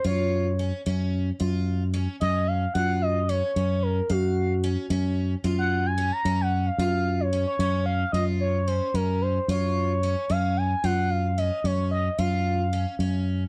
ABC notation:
X:1
M:5/8
L:1/16
Q:1/4=111
K:Gblyd
V:1 name="Analog synth lead"
d6 z4 | z6 e2 f2 | g2 e2 d4 B2 | G6 z4 |
z g2 a2 b2 g2 f- | f3 d2 d d2 f2 | e2 d2 c2 B2 c2 | d6 f2 a2 |
g2 f2 e2 d2 e2 | f8 z2 |]
V:2 name="Twelve-string acoustic guitar"
F4 D2 D4 | F4 D2 D4 | F4 D2 D4 | f4 D2 D4 |
F4 D2 D4 | F4 D2 D4 | F4 D2 D4 | F4 D2 D4 |
F4 D2 D4 | F4 D2 D4 |]
V:3 name="Fingered electric bass" clef=bass
G,,6 G,,4 | G,,6 G,,4 | G,,6 G,,4 | G,,6 G,,4 |
G,,6 G,,4 | G,,6 G,,4 | G,,6 G,,4 | G,,6 G,,4 |
G,,6 G,,4 | G,,6 G,,4 |]